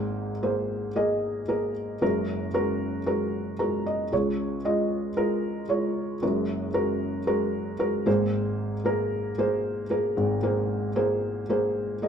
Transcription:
Already playing: G#1 G#2 A#3 G#4 C5
0.43 A#3 G#4 C5
0.96 A#3 G#4 D#5
1.48 A#3 G#4 A#4
2.01 F#1 F#2 G#3 F#4 A#4
2.54 G#3 F#4 A#4
3.06 G#3 F#4 A#4
3.59 G#3 F#4 A#4 A#5
3.86 D#5
4.12 C#2 C#3 G#3 F4 C#5
4.65 G#3 F4 D#5
5.16 G#3 F4 A#4
5.69 G#3 F4 C#5
6.22 F#1 F#2 G#3 F#4 A#4
6.74 G#3 F#4 A#4
7.27 G#3 F#4 A#4
7.79 G#3 F#4 A#4
8.06 G#1 G#2 A#3 G#4 C5
8.85 A#3 G#4 A#4
9.38 A#3 G#4 C5
9.90 A#3 G#4 A#4
10.17 G#1 G#2
10.43 A#3 G#4 C5
10.96 A#3 G#4 C5
11.49 A#3 G#4 C5
12.02 A#3 G#4 D#5

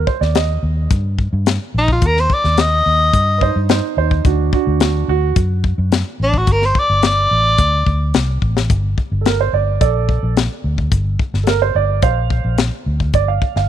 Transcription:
0.07 C5, kick
0.21 D#2 D5, snare
0.35 D#5, snare, closed hi-hat
0.63 D#2
0.91 G2, kick, closed hi-hat
1.19 kick
1.33 G2
1.46 snare, closed hi-hat
1.74 A#1 D#4
1.88 F4, kick
2.02 D#2, kick, closed hi-hat
2.06 A#4
2.17 C5, snare
2.30 D5, kick
2.44 D#2, snare
2.57 D#5, snare, closed hi-hat
2.86 D#2
3.13 G2, kick, closed hi-hat
3.38 B4, kick
3.42 D#4 C5
3.56 G2
3.69 D#4 C5, snare, closed hi-hat
3.97 D#2 D#4 C5
4.11 kick
4.25 D2 D4 F#4, kick, closed hi-hat
4.53 D4 F#4, kick
4.67 D2
4.80 D4 F#4, snare, closed hi-hat
5.08 D2 F#4
5.36 F#2, kick, closed hi-hat
5.64 kick
5.78 F#2
5.92 snare, closed hi-hat
6.20 A1 D4
6.34 F#4, kick
6.47 G1, kick, closed hi-hat
6.52 A#4
6.62 C5, snare
6.75 kick
6.79 D5
6.89 G1
7.03 snare, closed hi-hat
7.07 D5
7.31 A1
7.58 D2, kick, closed hi-hat
7.87 D2, kick
8.14 C2, snare, closed hi-hat
8.42 A1, kick
8.57 snare
8.70 G1, kick, closed hi-hat
8.98 kick
9.12 G1
9.21 A4
9.26 A#4, snare, closed hi-hat
9.41 C5
9.53 G1 D5
9.81 A#1 A4 D5, kick, closed hi-hat
10.09 kick
10.23 A#1
10.37 snare, closed hi-hat
10.64 D2
10.78 kick
10.92 G1, kick, closed hi-hat
11.19 kick
11.34 G1, snare
11.44 A4, snare, closed hi-hat
11.48 A#4
11.62 C5
11.75 G1 D5
12.02 A#1 C5 F5, kick, closed hi-hat
12.30 kick
12.45 A#1
12.58 snare, closed hi-hat
12.86 D2
13.00 kick
13.14 G1 D5, kick, closed hi-hat
13.28 F5
13.42 kick
13.56 G1 F5, snare

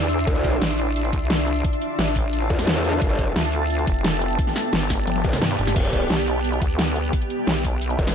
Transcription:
Already playing: E2 D4 E4 G4 D5 E5 C6
0.02 shaker
0.10 closed hi-hat, shaker
0.19 closed hi-hat
0.27 D2 D4 F4 E5, kick, closed hi-hat
0.36 closed hi-hat
0.44 kick, closed hi-hat, shaker
0.61 A1 F4, snare, closed hi-hat
0.70 closed hi-hat
0.79 closed hi-hat, shaker
0.93 A5, closed hi-hat
1.04 closed hi-hat
1.13 C2, kick, closed hi-hat, shaker
1.30 snare, closed hi-hat
1.39 shaker
1.47 closed hi-hat, shaker
1.56 closed hi-hat
1.64 kick, closed hi-hat
1.73 closed hi-hat
1.82 closed hi-hat, shaker
1.99 A1, snare, closed hi-hat
2.07 closed hi-hat
2.16 kick, open hi-hat, shaker
2.33 closed hi-hat
2.42 closed hi-hat
2.50 E2, kick, closed hi-hat, shaker
2.59 snare
2.67 snare, closed hi-hat
2.76 shaker
2.84 closed hi-hat, shaker
2.93 closed hi-hat
3.02 G1 B3 A4 G5, kick, closed hi-hat
3.10 closed hi-hat
3.19 kick, closed hi-hat, shaker
3.34 D2 G4, snare, closed hi-hat
3.44 closed hi-hat
3.53 closed hi-hat, shaker
3.70 D5, closed hi-hat
3.79 closed hi-hat
3.87 F1, kick, closed hi-hat, shaker
4.04 snare, closed hi-hat
4.13 shaker
4.22 closed hi-hat, shaker
4.30 closed hi-hat
4.39 kick, closed hi-hat
4.47 snare, closed hi-hat, shaker
4.56 snare, closed hi-hat, shaker
4.73 G1, snare, closed hi-hat
4.82 closed hi-hat, shaker
4.90 kick, snare, open hi-hat, shaker
5.07 closed hi-hat, high tom
5.16 closed hi-hat, high tom, shaker
5.24 B1, kick, closed hi-hat, shaker
5.33 snare, mid tom
5.42 G2, snare, closed hi-hat, mid tom
5.50 shaker
5.59 F1, closed hi-hat, mid tom, shaker
5.67 snare, closed hi-hat, mid tom
5.76 E1, kick, closed hi-hat, crash
5.84 closed hi-hat, shaker
5.93 kick, closed hi-hat, shaker
6.10 B1, snare, closed hi-hat
6.19 E5, closed hi-hat
6.27 closed hi-hat, shaker
6.45 closed hi-hat
6.53 closed hi-hat
6.62 D2, kick, closed hi-hat, shaker
6.69 B5, shaker
6.79 snare, closed hi-hat
6.96 closed hi-hat, shaker
7.04 shaker
7.13 kick, closed hi-hat
7.22 closed hi-hat, shaker
7.30 closed hi-hat, shaker
7.47 B1, snare, closed hi-hat
7.56 closed hi-hat
7.64 kick, open hi-hat, shaker
7.82 closed hi-hat
7.90 closed hi-hat
7.99 F1, kick, closed hi-hat, shaker
8.07 snare, shaker

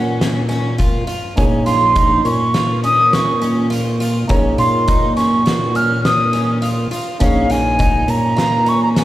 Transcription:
Already playing: A#2 A#3 C#4 D#4 G#4 C#5 F#5
0.21 snare, closed hi-hat
0.49 C#4, snare, closed hi-hat
0.78 F4, kick, closed hi-hat
1.07 F4, closed hi-hat
1.36 A#1 A#3 C#4 D#4 G#4 C#5 G#5, kick, closed hi-hat
1.66 F4 C6, snare, closed hi-hat
1.96 D#4, kick, closed hi-hat
2.25 A#2 C#4 C#6, closed hi-hat
2.54 F4, snare, closed hi-hat
2.84 C#4 D#6, closed hi-hat
3.13 C#6, snare, closed hi-hat
3.42 C#4, closed hi-hat
3.70 F4, closed hi-hat
4.00 F4, closed hi-hat
4.27 A#1 A#3 C#4 D#4 G#4 C#5 A#5, kick, closed hi-hat
4.58 A#2 F4 C6, closed hi-hat
4.88 D#4, kick, closed hi-hat
5.16 C#4 C#6, snare, closed hi-hat
5.46 F#4, snare, closed hi-hat
5.75 C#4 F6, closed hi-hat
6.04 D#6, snare, closed hi-hat
6.33 C#4, snare, closed hi-hat
6.62 F4, closed hi-hat
6.91 F4, closed hi-hat
7.19 A#1 A#3 C#4 D#4 G#4 C#5 F5, kick, closed hi-hat
7.50 F4 G#5, snare, closed hi-hat
7.79 D#4, kick, closed hi-hat
8.08 A#2 C#4 A#5, closed hi-hat
8.37 F4, snare, closed hi-hat
8.66 C#4 C#6, closed hi-hat
8.83 A#5
8.96 G#5, snare, closed hi-hat

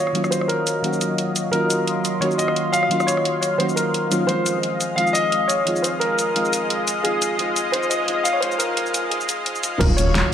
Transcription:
Already playing: D#3 F#3 A#3 C#4 F4 F#4 C#5 D#5 F5
0.07 cross-stick
0.13 D#3 F#3 A#3 C#4 F4, closed hi-hat
0.24 cross-stick, cabasa
0.31 C5, closed hi-hat, cabasa
0.41 cross-stick
0.48 A#4, closed hi-hat
0.67 closed hi-hat, cabasa
0.82 D#3 F#3 A#3 C#4 F#4, closed hi-hat
0.93 cabasa
1.01 closed hi-hat, cabasa
1.18 closed hi-hat
1.36 closed hi-hat, cabasa
1.51 D#3 F#3 A#3 C#4 F4 A#4 C6, closed hi-hat
1.70 closed hi-hat, cabasa
1.87 closed hi-hat
2.05 closed hi-hat, cabasa
2.20 D#3 F#3 A#3 C#4 F#4 C#5, closed hi-hat
2.31 cabasa
2.38 D#5, closed hi-hat, cabasa
2.48 cross-stick
2.56 closed hi-hat
2.72 F5, closed hi-hat, cabasa
2.83 cross-stick
2.89 D#3 F#3 A#3 C#4 F4, closed hi-hat
3.00 cross-stick, cabasa
3.07 C#5, closed hi-hat, cabasa
3.17 cross-stick
3.25 closed hi-hat
3.41 C#5, closed hi-hat, cabasa
3.58 D#3 F#3 A#3 C#4 F#4 C5, closed hi-hat
3.69 cabasa
3.76 A#4, closed hi-hat, cabasa
3.94 closed hi-hat
4.10 D#3 F#3 A#3 C#4 F4, closed hi-hat, cabasa
4.27 D#3 F3 G#3 C4 F4 C5 D#5, closed hi-hat
4.46 closed hi-hat, cabasa
4.63 closed hi-hat
4.81 closed hi-hat, cabasa
4.96 D#3 F3 G#3 C4 F4 F5, closed hi-hat
5.07 cabasa
5.13 D#5, closed hi-hat, cabasa
5.32 closed hi-hat
5.48 C#5, closed hi-hat, cabasa
5.65 D#3 F3 G#3 C4 F4, closed hi-hat
5.76 cabasa
5.82 C5, closed hi-hat, cabasa
6.00 A#4, closed hi-hat
6.19 closed hi-hat, cabasa
6.34 D#3 F3 G#3 C4 F4, closed hi-hat
6.45 cabasa
6.53 closed hi-hat, cabasa
6.70 closed hi-hat
6.88 closed hi-hat, cabasa
7.03 D#3 F3 G#3 C4 F4 G#4, closed hi-hat
7.22 closed hi-hat, cabasa
7.37 D#3 F3 G#3 C4 F4, closed hi-hat
7.56 closed hi-hat, cabasa
7.72 D#3 F3 G#3 C4 F4 C5, closed hi-hat
7.83 cabasa
7.90 D#5, closed hi-hat, cabasa
8.06 D#3 F3 G#3 C4 F4, closed hi-hat
8.23 F5, closed hi-hat, cabasa
8.33 C#5
8.40 D#3 F3 G#3 C4 F4 C5, closed hi-hat
8.52 cabasa
8.58 D#3 F3 G#3 C4 F4 A#4, closed hi-hat, cabasa
8.75 D#3 F3 G#3 C4 F4, closed hi-hat
8.86 cabasa
8.92 D#3 F3 G#3 C4 F4, closed hi-hat, cabasa
9.10 D#3 F3 G#3 C4 F4 G#4, closed hi-hat
9.21 cabasa
9.27 D#3 F3 G#3 C4 F4, closed hi-hat, cabasa
9.44 D#3 F3 G#3 C4 F4, closed hi-hat
9.55 cabasa
9.61 D#3 F3 G#3 C4 F4, closed hi-hat, cabasa
9.79 D#1 D#3 F#3 A#3 C#4 F4 A#4 C#5 F5, kick, closed hi-hat, crash, impact
9.97 C#5, closed hi-hat, cabasa
10.15 snare, closed hi-hat

